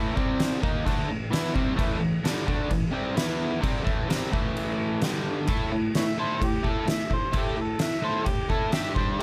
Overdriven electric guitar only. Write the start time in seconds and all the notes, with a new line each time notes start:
Already playing: A2 E3 A3
0.15 C3 G3 C4
0.61 D#3 A#3 D#4
0.85 D3 A3 D4
1.10 A2 E3
1.31 E3 B3 E4
1.54 C3 G3 C4
1.75 A2 E3 A3
1.99 A2 E3
2.24 G2 D3 G3
2.46 D3 A3 D4
2.70 A2 E3
2.91 C3 G3 C4
3.16 E3 B3 E4
3.60 C3 G3 C4
3.83 A2 E3 A3
4.08 C3 G3 C4
4.32 A2 E3 A3
5.02 G2 D3 G3
5.48 A3 E4 A4
5.72 A3 E4
5.97 A3 E4
6.18 A3 E4 A4
6.41 A3 E4
6.63 A3 E4 A4
6.86 A3 E4
7.10 A3 E4
7.33 A3 E4 A4
7.57 A3 E4
7.79 A3 E4
8.02 A3 E4 A4
8.25 A3 E4
8.49 A3 E4 A4
8.72 G3 D4 G4
8.97 G3 D4 G4
9.19 A3